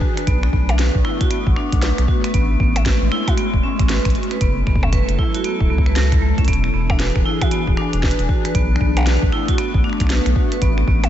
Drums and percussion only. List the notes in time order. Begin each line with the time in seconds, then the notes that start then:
0.01 kick
0.17 finger snap, closed hi-hat
0.27 kick, closed hi-hat
0.43 finger snap
0.53 kick
0.69 finger snap, closed hi-hat, percussion blips
0.79 snare, closed hi-hat
0.95 kick
1.05 finger snap
1.21 kick, closed hi-hat
1.31 finger snap, closed hi-hat
1.47 kick
1.56 finger snap
1.72 kick, closed hi-hat
1.82 snare, closed hi-hat
1.98 finger snap, closed hi-hat
2.08 kick
2.24 finger snap, closed hi-hat
2.34 kick, closed hi-hat
2.60 kick
2.76 closed hi-hat, percussion blips
2.86 finger snap, kick, snare, closed hi-hat
3.12 finger snap
3.28 kick, closed hi-hat, percussion blips
3.38 finger snap, closed hi-hat
3.54 kick
3.79 finger snap, kick, closed hi-hat
3.89 snare, closed hi-hat
4.05 finger snap, kick, closed hi-hat
4.10 closed hi-hat
4.15 closed hi-hat
4.23 closed hi-hat
4.31 finger snap, closed hi-hat
4.41 kick, closed hi-hat
4.67 finger snap, kick
4.75 kick
4.83 kick, percussion blips
4.93 finger snap, kick, closed hi-hat
5.09 closed hi-hat
5.19 kick
5.35 closed hi-hat
5.44 closed hi-hat
5.60 kick
5.78 kick
5.86 finger snap
5.96 snare, closed hi-hat
6.12 finger snap, kick, closed hi-hat
6.38 kick, closed hi-hat
6.45 kick, closed hi-hat
6.48 closed hi-hat
6.53 closed hi-hat
6.64 finger snap
6.90 finger snap, kick, percussion blips
7.00 snare, closed hi-hat
7.16 finger snap, kick
7.41 kick, closed hi-hat, percussion blips
7.51 finger snap, closed hi-hat
7.67 kick
7.77 finger snap
7.93 closed hi-hat
8.03 finger snap, kick, snare
8.11 closed hi-hat
8.19 closed hi-hat
8.29 kick
8.45 finger snap, closed hi-hat
8.55 kick, closed hi-hat
8.76 finger snap
8.81 kick
8.97 finger snap, closed hi-hat, percussion blips
8.99 percussion blips
9.01 percussion blips
9.03 percussion blips
9.05 snare, closed hi-hat, percussion blips
9.23 kick
9.32 finger snap
9.48 kick, closed hi-hat
9.58 finger snap, closed hi-hat
9.74 kick
9.84 finger snap
9.89 finger snap
9.93 finger snap
10.00 finger snap, kick, closed hi-hat
10.07 finger snap, snare, closed hi-hat
10.26 finger snap, closed hi-hat
10.36 kick
10.52 closed hi-hat
10.62 kick, closed hi-hat
10.78 finger snap
10.88 kick
11.04 closed hi-hat, percussion blips